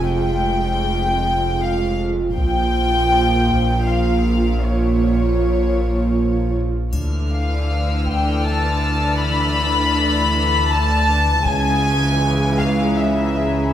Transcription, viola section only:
Already playing: G#3 F4
2.38 F3 F4
3.87 F3 F4
4.63 F3 F4
6.93 E3 D4
11.46 E3 G#3

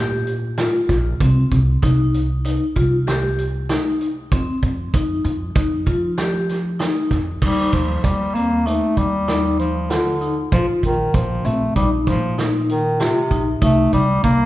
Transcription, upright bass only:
Already playing: A#2
0.89 A#1
1.20 C2
1.51 C2
1.83 C2
2.76 C2
4.32 F2
4.63 F2
4.94 F2
5.24 F2
5.56 F2
5.87 F3
7.11 F2
7.42 D#2
7.73 D#2
8.04 D#2
8.97 D#2
10.52 A#1
10.83 A#1
11.14 A#1
11.45 A#1
11.76 A#1
12.07 A#2
13.31 A#1
13.62 C2
13.93 C2
14.24 C2

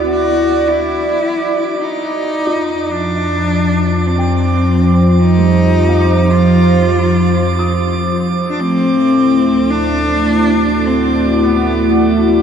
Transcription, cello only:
Already playing: B3
0.11 F#4
0.68 E4
1.79 D#4
2.90 D4
4.06 C4
5.19 D#4
6.30 F4
8.50 D4
8.60 C4
9.70 D4
10.86 C4
11.43 B3
11.99 A3

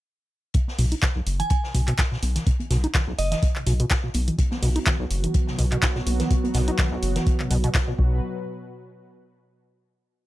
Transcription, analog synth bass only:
0.79 B1
1.27 F#1
1.75 B1
2.23 B1
2.71 B1
3.19 F#1
3.67 B1
4.15 B1
4.63 B1
5.11 F#1
5.59 B1
6.07 B1
6.55 B1
7.03 F#1
7.51 B1
7.99 B1

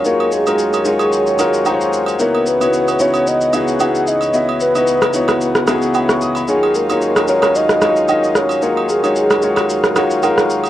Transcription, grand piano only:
Already playing: G#3 D#4 F4 F#4 G#4 A#4 C#5
0.05 G#3 D#4 F4 F#4 C#5
0.46 G#3 D#4 F4 F#4 A#4
0.85 G#3 D#4 F4 F#4 C#5
1.39 G#3 D#4 F4 F#4 A#4 F#5
1.65 G#3 D#4 F4 F#4 C5 A#5
1.74 C#5
2.19 B3 D#4 E4 F#4 C#5
2.60 B3 D#4 E4 F#4 C#5
2.99 B3 D#4 E4 F#4 C#5
3.53 B3 D#4 E4 F#4 G#4
3.80 B3 D#4 E4 F#4 G#4
4.33 B3 E4 F#4 D#5 E5
4.75 B3 D#4 E4 F#4 D#5
5.14 B3 D#4 E4 F#4 C#5
5.67 B3 D#4 E4 F#4 G#4
5.95 B5
6.10 C#6
6.22 D#6
6.36 B5
6.48 G#3 D#4 F4 F#4 C#5
6.89 G#3 D#4 F4 F#4 C#5
7.28 G#3 D#4 F4 F#4 A#4
7.82 G#3 D#4 F4 F#4 C#5
8.08 G#3 D#4 F4 F#4 D#5
8.62 G#3 D#4 F4 F#4 C#5
9.03 G#3 D#4 F4 F#4 C#5
9.42 G#3 D#4 F4 F#4 C#5
9.96 G#3 D#4 F4 F#4 C#5
10.22 G#3 D#4 F4 F#4 A#4

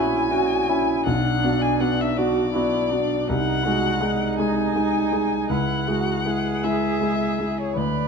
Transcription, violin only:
Already playing: G#5
1.06 F#5
1.62 G#5
1.80 F#5
2.01 E5
2.17 D5
3.28 F#5
4.39 G#5
5.50 F#5
6.63 E5
7.59 C#5
7.77 D5

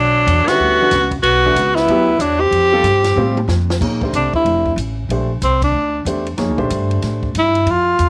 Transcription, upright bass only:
Already playing: B1
0.27 E2
0.47 muted upright bass stroke
0.59 D2
0.91 C#2
1.23 B1
1.55 C#2
1.87 D2
2.19 E2
2.51 F2
2.83 G2
3.17 A2
3.48 F2
3.80 A#1
4.13 C2
4.33 muted upright bass stroke
4.45 F1
4.76 A1
5.09 A#1
5.42 C2
5.72 D2
6.05 E2
6.38 F2
6.49 D2
6.60 A#1
6.70 G2
7.03 A2
7.34 G2
7.66 F2
7.99 E2

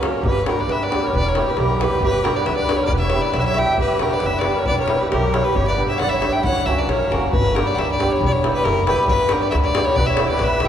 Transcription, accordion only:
0.00 A#4
0.21 G4
0.46 F#4
0.58 B4
0.69 B4
0.81 B4
1.01 A#4
1.12 B4
1.23 A#4
1.45 G4
1.56 G4
1.80 G4
2.00 G4
2.23 F#4
2.35 B4
2.47 B4
2.58 B4
2.82 A#4
2.92 B4
3.02 C#5
3.24 B4
3.36 B4
3.41 C#5
3.46 C#5
3.56 E5
3.79 G4
4.02 F#4
4.11 B4
4.22 B4
4.35 B4
4.55 A#4
4.67 B4
4.78 A#4
5.02 G4
5.09 G4
5.32 A#4
5.46 G4
5.56 G4
5.69 B4
5.90 C#5
6.00 D5
6.12 C#5
6.35 E5
6.47 C#5
6.68 C#5
6.80 B4
6.91 A#4
7.13 F#4
9.97 B4
10.07 C#5
10.31 B4
10.42 B4
10.62 E5

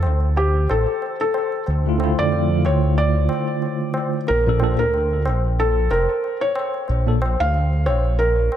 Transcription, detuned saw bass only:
0.05 D2
0.70 A1
1.68 D2
2.19 F2
2.66 D2
4.30 A#1
4.79 D2
5.27 A#1
5.91 F1
6.89 A#1
7.40 D2
7.87 A#1

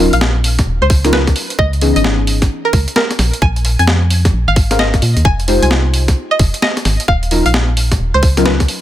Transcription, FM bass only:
Already playing: D#1
0.13 A#1
0.67 D#1
0.82 C#2
1.59 C#2
1.96 G#1
2.73 C#2
3.19 A#1
3.42 A#1
3.79 F2
4.33 A#1
4.48 G#1
5.02 A#2
5.17 D#2
5.25 F1
5.62 C2
6.40 F1
6.85 G#1
7.08 D#1
7.46 A#1
8.00 D#1
8.14 C#2

